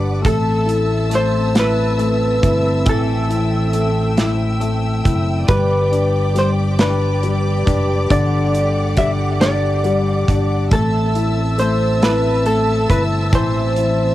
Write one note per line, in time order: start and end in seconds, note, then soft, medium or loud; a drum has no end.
0.00 0.22 G1 medium
0.00 0.21 D3 medium
0.00 0.27 G3 medium
0.00 0.27 D4 medium
0.00 0.21 B4 medium
0.00 0.21 D5 medium
0.00 0.22 F#5 medium
0.00 0.21 D6 medium
0.22 2.39 A1 loud
0.22 1.08 A3 medium
0.22 1.15 A4 medium
0.22 2.84 A5 medium
0.22 kick loud
0.22 closed hi-hat medium
0.26 5.45 C4 medium
0.26 5.45 E5 medium
0.26 5.45 E6 medium
0.66 1.53 E4 soft
0.66 closed hi-hat medium
1.10 1.97 A3 medium
1.10 snare soft
1.10 closed hi-hat medium
1.15 1.55 C5 medium
1.54 2.40 E4 soft
1.54 snare loud
1.54 closed hi-hat medium
1.60 2.89 B4 loud
1.99 3.69 A3 medium
1.99 closed hi-hat soft
2.42 2.84 G1 medium
2.42 3.28 E4 soft
2.42 kick medium
2.42 closed hi-hat medium
2.85 5.01 A1 loud
2.85 5.44 E3 medium
2.85 8.05 G5 medium
2.85 kick loud
2.85 closed hi-hat medium
2.89 4.15 A4 medium
3.29 4.16 E4 soft
3.29 closed hi-hat soft
3.73 4.59 A3 medium
3.73 closed hi-hat medium
4.17 5.03 E4 soft
4.17 snare loud
4.17 closed hi-hat medium
4.60 5.45 A3 medium
4.60 closed hi-hat soft
5.04 5.46 F#1 medium
5.04 5.47 E4 soft
5.04 kick medium
5.04 closed hi-hat medium
5.48 7.62 G1 loud
5.48 6.33 G3 medium
5.48 10.68 G4 medium
5.48 6.38 B4 medium
5.48 10.67 D5 medium
5.48 10.68 D6 medium
5.48 kick loud
5.48 closed hi-hat medium
5.92 6.78 D4 soft
5.92 closed hi-hat medium
6.35 7.22 G3 medium
6.35 6.50 C5 medium
6.35 snare soft
6.35 closed hi-hat medium
6.79 7.64 D4 medium
6.79 8.11 B4 medium
6.79 snare loud
6.79 closed hi-hat medium
7.23 8.93 G3 medium
7.23 closed hi-hat soft
7.66 8.08 F#1 medium
7.66 8.53 D4 soft
7.66 kick medium
7.66 closed hi-hat medium
8.10 10.24 G1 loud
8.10 10.67 D3 medium
8.10 8.98 D5 medium
8.10 10.69 F#5 medium
8.10 kick loud
8.10 closed hi-hat medium
8.55 9.39 D4 soft
8.55 closed hi-hat medium
8.97 9.83 G3 medium
8.97 9.10 E5 medium
8.97 kick medium
8.97 closed hi-hat medium
9.40 10.27 D4 soft
9.40 10.72 D5 loud
9.40 snare loud
9.40 closed hi-hat medium
9.84 10.69 G3 medium
9.84 closed hi-hat soft
10.28 10.69 G1 medium
10.28 10.70 D4 medium
10.28 kick medium
10.28 closed hi-hat medium
10.71 12.85 A1 loud
10.71 11.57 A3 medium
10.71 14.15 C4 medium
10.71 11.59 A4 medium
10.71 14.15 E5 medium
10.71 14.15 A5 medium
10.71 14.15 E6 medium
10.71 kick loud
10.71 closed hi-hat medium
11.15 12.00 E4 soft
11.15 closed hi-hat medium
11.58 12.44 A3 medium
11.58 12.03 C5 medium
11.58 closed hi-hat medium
12.02 12.88 E4 medium
12.02 12.43 B4 medium
12.02 snare loud
12.02 closed hi-hat medium
12.45 14.15 A3 medium
12.45 12.90 A4 medium
12.45 closed hi-hat soft
12.90 13.30 G1 medium
12.90 13.76 E4 medium
12.90 13.02 B4 medium
12.90 kick medium
12.90 closed hi-hat medium
13.32 14.15 A1 medium
13.32 14.15 E3 medium
13.32 14.15 C5 medium
13.32 kick loud
13.32 closed hi-hat medium
13.76 14.15 E4 soft
13.76 closed hi-hat medium